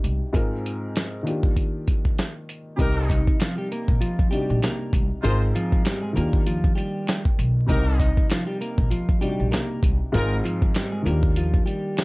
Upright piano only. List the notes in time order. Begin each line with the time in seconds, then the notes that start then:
Already playing: C3 G3 D4 D#4 F#4 G4
0.33 G#2 G#3 C4 F4 A#4
1.23 D#3 A#3 D4 F4
1.27 G4
2.77 C3 G3 C4 D#4
2.81 A#4
4.31 C3 G3 D4 D#4 F#4
4.40 G4
5.23 G#2 G#3 C4 F4 A#4
6.13 D#3 A#3 D4 F4
6.17 G4
7.66 C3 G3 C4 D#4
7.70 A#4
9.21 C3 G3 D4 D#4 F#4
9.30 G4
10.13 G#2 G#3 C4 F4 A#4
11.02 D#3 A#3 D4 F4
11.07 G4